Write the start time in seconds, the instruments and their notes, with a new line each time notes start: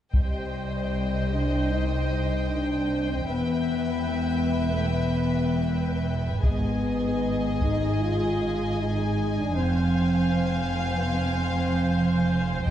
0.14 cello section C2, double bass section C2, french horn section G3, viola section C5, violin section D#5 G5, taiko
1.32 french horn section D4
1.71 french horn section D#4
2.51 french horn section D4
3.10 french horn section C4
3.27 double bass section E1, cello section E2, french horn section B3, viola section B4, violin section E5
4.09 french horn section B3
4.69 french horn section A3
4.87 french horn section B3
6.42 double bass section G#1, cello section G#2, viola section G#4, violin section D#5 G#5, taiko
6.46 french horn section B3
7.61 french horn section D#4, taiko
8.01 french horn section F4
8.81 french horn section D#4
9.38 french horn section D4
9.56 double bass section F1, cello section F2, french horn section C4, viola section C5, violin section F5
10.34 french horn section C4
10.94 french horn section B3
11.14 french horn section C4
12.66 violin section D#5 G5